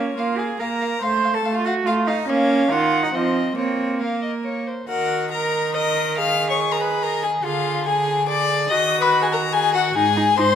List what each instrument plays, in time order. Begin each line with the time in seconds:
Already playing: viola A#3, cello C#4, violin C#5
0.17 viola A#3, cello F4, violin F5
0.38 cello G#4, violin F5 G#5
0.59 viola A#3, cello A#4, violin F5 A#5
0.81 violin F5
1.02 viola A3, cello C5, violin F5 C6
1.24 violin F5
1.34 cello A4, violin A5
1.45 viola A3, violin F5
1.55 cello F4, violin F5
1.65 cello F#4, violin F5 F#5
1.86 viola A3, cello F4, violin F5
2.07 cello D#4, violin D#5 F5
2.28 viola A#3, cello C#4, violin C#5 F5
2.70 viola D#3, cello F4, violin F5 F#5
3.03 cello D#4, violin D#5
3.13 viola F3, cello C4, violin C5 D#5
3.57 viola A#3, cello C4, violin C5 C#5
4.00 cello A#3, violin A#4 F5
4.23 violin D#5
4.44 violin C#5
4.67 violin C5
4.88 cello D#3, violin F#4 F#5, viola A#4
5.32 viola A#4, violin A#4 A#5
5.74 viola A#4, violin D#5 D#6
6.17 viola G#4, violin F5 F6
6.50 violin C#5 C#6
6.72 violin A#4 A#5
6.81 violin B4 B5
7.03 violin A#4 A#5
7.23 violin G#4 G#5
7.44 cello D3, violin F4 F5, viola G#4
7.86 violin G#4 G#5, viola G#4
8.28 viola G#4, violin D5 D6
8.70 cello D#3, viola F#4, violin D#5 D#6
9.01 violin B4 B5
9.22 violin G#4 G#5
9.33 violin A#4 A#5
9.53 violin G#4 G#5
9.74 violin F#4 F#5
9.95 cello G#2, viola D#4, violin G#4 G#5
10.16 viola D#4
10.37 cello G#2, viola D#4, violin C5 C6